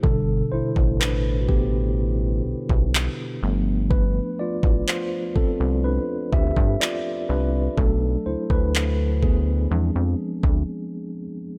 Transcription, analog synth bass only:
\new Staff \with { instrumentName = "Analog synth bass" } { \clef bass \time 4/4 \key e \phrygian \tempo 4 = 62 g,,8 a,,16 a,,4.~ a,,16 b,,16 b,,8 r16 g,,8~ | g,,8 r16 a,,16 r8 c,16 c,8 r16 d,16 g,16 r8 c,8 | b,,8 d,16 d,4~ d,16 e,16 f,16 r16 d,16 r4 | }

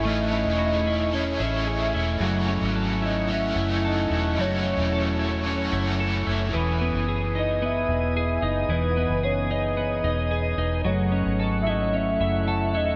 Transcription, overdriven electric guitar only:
\new Staff \with { instrumentName = "Overdriven electric guitar" } { \time 4/4 \key e \major \tempo 4 = 111 <a cis' e' gis'>2 <a cis' e' gis'>8 <cis' e' gis'>4. | <fis, cis e a cis' fis'>2 <e a cis' fis'>8 <e a cis' fis'>4. | <fis, cis e a cis' fis'>2 <e a cis' fis'>8 <e a cis' fis'>4. | r1 |
r1 | r1 | }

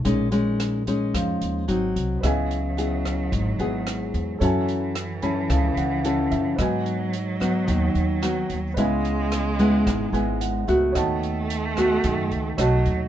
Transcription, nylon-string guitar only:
\new Staff \with { instrumentName = "Nylon-string guitar" } { \time 4/4 \key bes \dorian \tempo 4 = 110 << { <aes des' ees'>8 <aes des' ees'>4 <aes des' ees'>4. <ges c' ees'>4 | \key cis \minor <b e' gis'>8 r8 <b e' gis'>4. <b e' gis'>4. | <cis' e' a'>4 r8 <cis' e' a'>4. <cis' e' a'>4 | <fis b dis'>4 r8 <fis b dis'>4. <fis b dis'>8 r8 |
<gis b e'>4 r8 <gis b e'>4 <gis b e'>4 <a b fis'>8~ | <a b fis'>4. <a b fis'>4. <a dis' fis'>4 | } \\ { bes,2 f4 r4 | cis2 gis,2 | fis2 cis2 | gis,2 dis2 |
cis2 gis,2 | dis2 dis4 r4 | } >> }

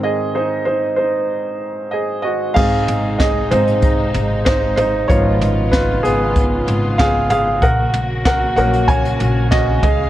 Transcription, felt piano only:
<<
  \new Staff \with { instrumentName = "Felt piano" } { \time 4/4 \key aes \mixolydian \tempo 4 = 95 <aes' ees''>8 <ees' c''>8 <ees' c''>8 <ees' c''>4. <aes' ees''>8 <ges' ees''>8 | <aes' f''>4 <aes' ees''>8 c''4. <ees' c''>8 <ees' c''>8 | <f' des''>4 <f' ces''>8 <ces' aes'>4. <aes' f''>8 <aes' f''>8 | <bes' ges''>4 <bes' ges''>8 <bes' ges''>8 <des'' aes''>4 <ges' ees''>8 <aes' ees''>8 | }
  \new Staff \with { instrumentName = "Felt piano" } { \time 4/4 \key aes \mixolydian <aes, ees c'>8 r2. r8 | <aes c' ees'>8 r4 <aes c' ees'>8 r2 | <f ces' ees'>1 | r4. <ges bes des'>8 r2 | }
>>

